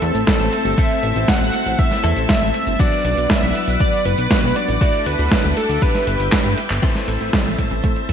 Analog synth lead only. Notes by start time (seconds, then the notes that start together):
Already playing: A4
0.28 A4
0.78 E5
1.28 F#5
1.79 E5
2.29 E5
2.80 D5
3.30 E5
3.80 D5
4.06 B4
4.56 D5
4.81 D5
5.06 B4
5.57 A4
5.82 B4